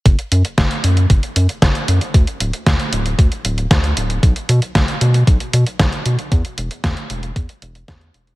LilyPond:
<<
  \new Staff \with { instrumentName = "Analog synth bass" } { \clef bass \time 4/4 \key d \lydian \tempo 4 = 115 fis,,8 fis,8 fis,,8 fis,8 fis,,8 fis,8 fis,,8 fis,8 | d,8 d,,8 d,8 d,,8 d,8 d,,8 d,8 d,,8 | b,,8 b,8 b,,8 b,8 b,,8 b,8 b,,8 b,8 | e,8 e,,8 e,8 e,,8 e,8 e,,8 e,8 e,,8 | }
  \new DrumStaff \with { instrumentName = "Drums" } \drummode { \time 4/4 <hh bd>16 hh16 hh16 hh16 <hh bd sn>16 hh16 hh16 hh16 <hh bd>16 hh16 hh16 hh16 <hh bd sn>16 hh16 hh16 hh16 | <hh bd>16 hh16 hh16 hh16 <hh bd sn>16 hh16 hh16 hh16 <hh bd>16 hh16 hh16 hh16 <hh bd sn>16 hh16 hh16 hh16 | <hh bd>16 hh16 hh16 hh16 <hh bd sn>16 hh16 hh16 hh16 <hh bd>16 hh16 hh16 hh16 <hh bd sn>16 hh16 hh16 hh16 | <hh bd>16 hh16 hh16 hh16 <hh bd sn>16 hh16 hh16 hh16 <hh bd>16 hh16 hh16 hh16 <hh bd sn>16 hh16 hh16 hh16 | }
>>